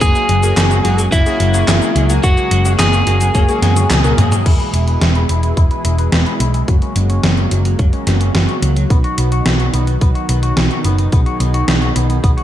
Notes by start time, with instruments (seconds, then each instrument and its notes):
Already playing: supersaw synth F#3
0.01 picked electric bass F#1, supersaw synth C#3 G#3 A#3 F#4, clean electric guitar F#3, analog polysynth A#3 F#4 G#4, lead electric guitar G#4, kick, closed hi-hat, shaker
0.15 analog polysynth A#3 F#4 G#4, clean electric guitar C#4, closed hi-hat, shaker
0.29 picked electric bass F#1, clean electric guitar F#3, closed hi-hat
0.43 analog polysynth A#3 F#4 G#4, clean electric guitar C#4, closed hi-hat, shaker
0.57 picked electric bass F#1, clean electric guitar F#3, analog polysynth A#3 F#4 G#4, snare, clap, closed hi-hat, shaker
0.71 clean electric guitar C#4, closed hi-hat, shaker
0.85 picked electric bass F#1, clean electric guitar F#3, analog polysynth A#3 F#4 G#4, closed hi-hat
0.98 clean electric guitar F#3, closed hi-hat, shaker
1.12 picked electric bass F#1, clean electric guitar F#3, analog polysynth A#3 F#4 C#5, lead electric guitar E4, kick, closed hi-hat, shaker
1.26 analog polysynth A#3 F#4 G#4, clean electric guitar C#4, closed hi-hat, shaker
1.40 picked electric bass F#1, clean electric guitar F#3, analog polysynth A#3 F#4 C#5, closed hi-hat
1.54 analog polysynth A#3 F#4 G#4, clean electric guitar C#4, closed hi-hat, shaker
1.68 picked electric bass F#1, clean electric guitar F#3, analog polysynth A#3 F#4 G#4, snare, clap, closed hi-hat, shaker
1.82 clean electric guitar C#4, closed hi-hat, shaker
1.95 picked electric bass C#2, clean electric guitar F#3, analog polysynth A#3 F#4 G#4, closed hi-hat
2.09 clean electric guitar F#3, analog polysynth A#3 F#4 G#4, closed hi-hat, shaker
2.23 picked electric bass F#1, clean electric guitar F#3, analog polysynth A#3 F#4 G#4, lead electric guitar F#4, kick, closed hi-hat, shaker
2.37 analog polysynth A#3 F#4 G#4, clean electric guitar C#4, closed hi-hat, shaker
2.51 picked electric bass F#1, clean electric guitar F#3, closed hi-hat
2.65 analog polysynth A#3 F#4 G#4, clean electric guitar C#4, closed hi-hat, shaker
2.79 picked electric bass F#1, clean electric guitar F#3, analog polysynth A#3 F#4 G#4, lead electric guitar G#4, snare, clap, closed hi-hat, shaker
2.93 clean electric guitar C#4, closed hi-hat, shaker
3.07 picked electric bass F#1, clean electric guitar F#3, analog polysynth A#3 F#4 G#4, closed hi-hat
3.21 clean electric guitar F#3, closed hi-hat, shaker
3.35 picked electric bass F#1, clean electric guitar F#3, analog polysynth A#3 F#4 C#5, kick, closed hi-hat, shaker
3.49 analog polysynth A#3 F#4 G#4, clean electric guitar C#4, closed hi-hat, shaker
3.62 picked electric bass F#2, clean electric guitar F#3, analog polysynth A#3 F#4 G#4, snare, closed hi-hat, high tom
3.76 clean electric guitar C#4, closed hi-hat, high tom, shaker
3.90 picked electric bass C#2, clean electric guitar F#3, analog polysynth A#3 F#4 G#4, snare, clap, closed hi-hat, mid tom, shaker
4.04 analog polysynth A#3 F#4 A#4, clean electric guitar C#4, closed hi-hat, mid tom, shaker
4.18 picked electric bass F#2, clean electric guitar F#3, analog polysynth A#3 F#4 G#4, closed hi-hat, mid tom
4.32 clean electric guitar F#3, closed hi-hat, mid tom, shaker
4.46 picked electric bass E1, supersaw synth B2 E3 G#3 E4 G#4, clean electric guitar E4, kick, closed hi-hat, crash
4.60 clean electric guitar B4, closed hi-hat
4.73 picked electric bass E1, clean electric guitar E4, closed hi-hat
4.88 clean electric guitar B4, closed hi-hat
5.01 picked electric bass E1, clean electric guitar E4, snare, closed hi-hat
5.15 clean electric guitar B4, closed hi-hat
5.29 picked electric bass E1, clean electric guitar E4, closed hi-hat
5.43 clean electric guitar E4, closed hi-hat
5.57 picked electric bass E1, clean electric guitar E4, kick, closed hi-hat
5.71 clean electric guitar B4, closed hi-hat
5.85 picked electric bass E1, clean electric guitar E4, closed hi-hat
5.99 clean electric guitar B4, closed hi-hat
6.12 picked electric bass E1, clean electric guitar E4, snare, closed hi-hat
6.26 clean electric guitar B4, closed hi-hat
6.40 picked electric bass B1, clean electric guitar E4, closed hi-hat
6.54 clean electric guitar E4, closed hi-hat
6.68 picked electric bass F#1, supersaw synth C#3 F#3 A#3 F#4, clean electric guitar F#3, kick, closed hi-hat
6.82 clean electric guitar C#4, closed hi-hat
6.96 picked electric bass F#1, clean electric guitar F#3, closed hi-hat
7.10 clean electric guitar C#4, closed hi-hat
7.24 picked electric bass F#1, clean electric guitar F#3, snare, closed hi-hat
7.37 clean electric guitar C#4, closed hi-hat
7.51 picked electric bass F#1, clean electric guitar F#3, closed hi-hat
7.65 clean electric guitar F#3, closed hi-hat
7.79 picked electric bass F#1, clean electric guitar F#3, kick, closed hi-hat
7.93 clean electric guitar C#4, closed hi-hat
8.07 picked electric bass F#1, clean electric guitar F#3, snare, closed hi-hat
8.21 clean electric guitar C#4, closed hi-hat
8.35 picked electric bass F#1, clean electric guitar F#3, snare, closed hi-hat
8.48 clean electric guitar C#4, closed hi-hat
8.62 picked electric bass C#2, clean electric guitar F#3, closed hi-hat
8.76 clean electric guitar F#3, closed hi-hat
8.90 picked electric bass B1, supersaw synth B2 D#3 D#4, clean electric guitar B3, kick, closed hi-hat
9.04 clean electric guitar F#4, closed hi-hat
9.18 picked electric bass B1, clean electric guitar B3, closed hi-hat
9.32 clean electric guitar F#4, closed hi-hat
9.46 picked electric bass B1, clean electric guitar B3, snare, closed hi-hat
9.60 clean electric guitar F#4, closed hi-hat
9.74 picked electric bass B1, clean electric guitar B3, closed hi-hat
9.87 clean electric guitar B3, closed hi-hat
10.01 picked electric bass B1, clean electric guitar B3, kick, closed hi-hat
10.15 clean electric guitar F#4, closed hi-hat
10.29 picked electric bass B1, clean electric guitar B3, closed hi-hat
10.43 clean electric guitar F#4, closed hi-hat
10.57 picked electric bass B1, clean electric guitar B3, snare, closed hi-hat
10.71 clean electric guitar F#4, closed hi-hat
10.85 picked electric bass F#1, clean electric guitar B3, closed hi-hat
10.98 clean electric guitar B3, closed hi-hat
11.12 picked electric bass B1, clean electric guitar B3, supersaw synth G#4, kick, closed hi-hat
11.26 clean electric guitar F#4, closed hi-hat
11.40 picked electric bass B1, clean electric guitar B3, closed hi-hat
11.54 clean electric guitar F#4, closed hi-hat
11.68 picked electric bass B1, clean electric guitar B3, snare, closed hi-hat
11.82 clean electric guitar F#4, closed hi-hat
11.96 picked electric bass B1, clean electric guitar B3, closed hi-hat
12.10 clean electric guitar B3, closed hi-hat
12.23 picked electric bass B1, clean electric guitar B3, kick, closed hi-hat
12.37 clean electric guitar F#4, closed hi-hat